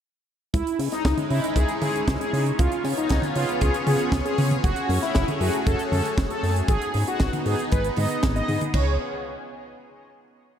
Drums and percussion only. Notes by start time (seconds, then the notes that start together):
0.54 kick, closed hi-hat
0.67 closed hi-hat
0.79 open hi-hat
0.92 snare, closed hi-hat
1.05 kick, snare, closed hi-hat
1.17 closed hi-hat, high tom
1.30 open hi-hat
1.44 closed hi-hat
1.56 kick, closed hi-hat
1.68 closed hi-hat
1.81 open hi-hat, high tom
1.96 closed hi-hat
2.08 kick, snare, closed hi-hat
2.21 closed hi-hat
2.34 open hi-hat
2.46 closed hi-hat
2.59 kick, closed hi-hat
2.72 closed hi-hat
2.84 snare, open hi-hat
2.97 closed hi-hat
3.09 kick, snare, closed hi-hat
3.22 closed hi-hat, high tom
3.35 open hi-hat
3.49 closed hi-hat
3.61 kick, closed hi-hat
3.74 closed hi-hat
3.87 open hi-hat, high tom
3.99 closed hi-hat
4.12 kick, snare, closed hi-hat
4.26 closed hi-hat
4.38 open hi-hat, high tom
4.51 closed hi-hat, high tom
4.64 kick, closed hi-hat
4.76 closed hi-hat
4.90 open hi-hat
5.03 snare, closed hi-hat
5.15 kick, snare, closed hi-hat
5.28 closed hi-hat, high tom
5.41 open hi-hat
5.53 closed hi-hat
5.67 kick, closed hi-hat
5.79 closed hi-hat
5.92 open hi-hat, high tom
6.05 closed hi-hat
6.18 kick, snare, closed hi-hat
6.30 closed hi-hat
6.43 open hi-hat
6.56 closed hi-hat
6.68 kick, closed hi-hat
6.82 closed hi-hat
6.94 snare, open hi-hat
7.07 closed hi-hat
7.20 kick, snare, closed hi-hat
7.33 closed hi-hat, high tom
7.46 open hi-hat
7.59 closed hi-hat
7.72 kick, closed hi-hat
7.84 closed hi-hat
7.96 open hi-hat, high tom
8.11 closed hi-hat
8.23 kick, snare, closed hi-hat
8.36 closed hi-hat
8.48 open hi-hat, high tom
8.61 closed hi-hat, high tom
8.74 kick, crash